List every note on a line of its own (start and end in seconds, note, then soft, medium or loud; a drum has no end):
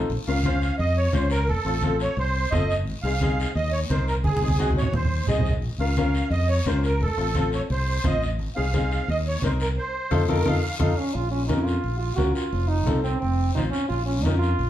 0.00 0.11 D#4 medium
0.00 0.10 F4 medium
0.00 0.10 A4 medium
0.10 0.17 A#1 medium
0.10 high conga soft
0.10 long guiro medium
0.27 0.69 C#2 medium
0.27 0.34 C#4 medium
0.27 0.34 F4 medium
0.27 0.34 A#4 medium
0.27 0.76 F5 loud
0.43 0.69 C#4 medium
0.43 0.69 F4 medium
0.43 0.69 C5 medium
0.43 high conga medium
0.43 short guiro medium
0.61 short guiro medium
0.78 1.07 F2 loud
0.78 0.97 D#5 loud
0.78 high conga soft
0.78 long guiro medium
0.97 1.13 C#5 loud
1.13 1.50 C#2 medium
1.13 1.31 C#4 medium
1.13 1.32 F4 medium
1.13 1.29 C5 medium
1.13 1.32 C#5 medium
1.13 high conga medium
1.13 short guiro medium
1.30 1.47 A#4 loud
1.30 short guiro medium
1.47 1.55 F1 medium
1.47 1.97 A4 medium
1.47 high conga soft
1.47 long guiro medium
1.65 2.06 A1 medium
1.65 1.72 C4 medium
1.65 1.72 F4 medium
1.65 1.72 A4 medium
1.81 2.07 C4 medium
1.81 2.07 F4 medium
1.81 2.08 A4 medium
1.81 high conga medium
1.81 short guiro medium
1.99 2.17 C#5 medium
1.99 short guiro medium
2.17 2.45 C2 loud
2.17 2.54 C5 loud
2.17 high conga soft
2.17 long guiro medium
2.51 2.86 F#1 medium
2.51 2.70 C4 medium
2.51 2.70 F4 medium
2.51 2.70 A4 medium
2.51 2.76 D#5 loud
2.51 high conga medium
2.51 low conga medium
2.51 short guiro medium
2.70 short guiro medium
2.86 2.93 G#1 loud
2.86 high conga soft
2.86 long guiro medium
3.03 3.45 C2 medium
3.03 3.10 C4 medium
3.03 3.10 D#4 medium
3.03 3.10 G#4 medium
3.03 3.51 F5 loud
3.21 3.46 C4 medium
3.21 3.46 D#4 medium
3.21 3.46 G#4 medium
3.21 high conga medium
3.21 short guiro medium
3.40 short guiro medium
3.55 3.83 D#2 loud
3.55 3.72 D#5 loud
3.55 high conga soft
3.55 long guiro medium
3.72 3.80 C#5 loud
3.90 4.25 C2 medium
3.90 4.08 C4 medium
3.90 4.08 D#4 medium
3.90 4.09 A#4 medium
3.90 4.06 C5 medium
3.90 high conga medium
3.90 short guiro medium
4.07 4.15 A#4 medium
4.07 short guiro medium
4.24 4.31 G#1 loud
4.24 4.73 G#4 loud
4.24 high conga medium
4.24 long guiro medium
4.37 high conga medium
4.41 4.83 C2 medium
4.41 4.48 C4 medium
4.41 4.48 D#4 medium
4.41 4.49 G#4 medium
4.48 high conga medium
4.59 4.83 C4 medium
4.59 4.83 D#4 medium
4.59 4.84 F#4 medium
4.59 high conga medium
4.59 short guiro medium
4.71 high conga medium
4.77 4.93 C#5 medium
4.77 short guiro medium
4.82 low conga loud
4.93 5.21 D#2 loud
4.93 5.26 C5 medium
4.93 low conga medium
4.93 long guiro medium
5.05 low conga medium
5.27 5.62 C2 medium
5.27 5.46 C4 medium
5.27 5.46 D#4 medium
5.27 5.46 G#4 medium
5.27 5.53 D#5 medium
5.27 low conga loud
5.27 short guiro medium
5.38 low conga loud
5.45 short guiro medium
5.50 low conga medium
5.62 5.69 A#1 loud
5.62 high conga soft
5.62 long guiro medium
5.78 6.20 C#2 medium
5.78 5.86 C#4 medium
5.78 5.86 F4 medium
5.78 5.87 A#4 medium
5.78 6.28 F5 loud
5.97 6.22 C#4 medium
5.97 6.22 F4 medium
5.97 6.22 A#4 medium
5.97 high conga medium
5.97 short guiro medium
6.14 short guiro medium
6.30 6.59 F2 loud
6.30 6.48 D#5 loud
6.30 high conga soft
6.30 long guiro medium
6.48 6.65 C#5 loud
6.65 7.02 C#2 medium
6.65 6.85 C#4 medium
6.65 6.85 F4 medium
6.65 6.85 A#4 medium
6.65 6.83 C5 medium
6.65 high conga medium
6.65 short guiro medium
6.83 7.00 A#4 medium
6.83 short guiro medium
7.00 7.08 F1 loud
7.00 7.50 A4 medium
7.00 high conga soft
7.00 long guiro medium
7.17 7.59 A1 medium
7.17 7.24 C4 medium
7.17 7.24 F4 medium
7.17 7.24 A4 medium
7.35 7.60 C4 medium
7.35 7.60 F4 medium
7.35 7.60 A4 medium
7.35 high conga medium
7.35 short guiro medium
7.52 7.62 C#5 medium
7.52 short guiro medium
7.70 7.98 C2 loud
7.70 8.06 C5 loud
7.70 high conga soft
7.70 long guiro medium
8.04 8.40 A1 medium
8.04 8.22 C4 medium
8.04 8.22 F4 medium
8.04 8.23 C5 medium
8.04 8.29 D#5 medium
8.04 high conga loud
8.04 low conga medium
8.04 short guiro medium
8.22 short guiro medium
8.39 8.47 G#1 loud
8.39 high conga soft
8.39 long guiro medium
8.56 8.99 C2 medium
8.56 8.62 C4 medium
8.56 8.62 D#4 medium
8.56 8.63 G#4 medium
8.56 9.09 F5 loud
8.73 8.97 C4 medium
8.73 8.98 D#4 medium
8.73 8.98 G#4 medium
8.73 high conga medium
8.73 short guiro medium
8.91 short guiro medium
9.08 9.36 D#2 loud
9.08 9.17 D#5 loud
9.08 high conga soft
9.08 long guiro medium
9.27 9.42 C#5 medium
9.42 9.77 C2 medium
9.42 9.61 C4 medium
9.42 9.61 D#4 medium
9.42 9.61 A#4 medium
9.42 9.51 C5 medium
9.42 high conga loud
9.42 short guiro medium
9.60 9.69 A#4 medium
9.60 short guiro medium
9.78 10.25 C5 loud
10.11 10.24 F2 loud
10.11 10.22 D#4 loud
10.11 10.22 F4 loud
10.11 10.22 A4 loud
10.11 high conga loud
10.11 long guiro medium
10.28 10.42 F2 medium
10.28 10.39 D#4 medium
10.28 10.40 F4 loud
10.28 10.40 A4 loud
10.28 10.47 A#4 medium
10.28 high conga loud
10.28 long guiro loud
10.45 10.59 F2 medium
10.45 10.57 D#4 loud
10.45 10.57 F4 loud
10.45 10.57 A4 medium
10.45 10.78 F5 loud
10.45 high conga loud
10.45 long guiro loud
10.79 10.93 F2 medium
10.79 10.91 D#4 loud
10.79 10.99 D#4 medium
10.79 10.91 F4 medium
10.79 10.91 A4 medium
10.79 11.04 F5 medium
10.79 high conga loud
10.79 long guiro medium
10.97 11.16 C#4 medium
11.14 11.51 A#1 loud
11.14 11.30 F4 medium
11.14 high conga soft
11.14 long guiro medium
11.31 11.46 C#4 medium
11.47 11.77 F2 medium
11.47 11.73 C#4 medium
11.47 11.66 D#4 medium
11.47 11.73 F4 medium
11.47 11.73 A#4 medium
11.47 high conga medium
11.47 short guiro medium
11.65 11.98 F4 medium
11.65 short guiro medium
11.84 12.12 A#1 medium
11.84 high conga soft
11.84 long guiro medium
11.99 12.15 F4 medium
12.16 12.31 C#2 medium
12.16 12.42 C#4 medium
12.16 12.42 F4 medium
12.16 12.35 F#4 medium
12.16 12.42 A#4 medium
12.16 high conga medium
12.16 short guiro medium
12.34 12.70 F4 medium
12.34 short guiro medium
12.52 12.87 F1 loud
12.52 high conga soft
12.52 long guiro medium
12.68 13.03 D#4 medium
12.86 13.15 C2 medium
12.86 13.11 C4 medium
12.86 13.11 F4 medium
12.86 13.11 A4 medium
12.86 high conga medium
12.86 short guiro medium
13.04 13.20 C4 medium
13.04 short guiro medium
13.20 13.50 F1 medium
13.20 13.53 C4 medium
13.20 high conga soft
13.20 long guiro medium
13.55 13.70 A1 medium
13.55 13.80 C4 medium
13.55 13.63 D#4 medium
13.55 13.80 F4 medium
13.55 13.80 C5 medium
13.55 high conga medium
13.55 short guiro medium
13.71 13.88 C#4 medium
13.71 short guiro medium
13.89 14.25 A#1 medium
13.89 14.05 F4 medium
13.89 high conga soft
13.89 long guiro medium
14.06 14.25 C#4 medium
14.23 14.52 F2 medium
14.23 14.50 C#4 medium
14.23 14.38 D#4 medium
14.23 14.50 F4 medium
14.23 14.50 A#4 medium
14.23 high conga medium
14.23 short guiro medium
14.38 14.70 F4 medium
14.38 short guiro medium
14.59 14.70 A#1 medium
14.59 high conga soft
14.59 long guiro medium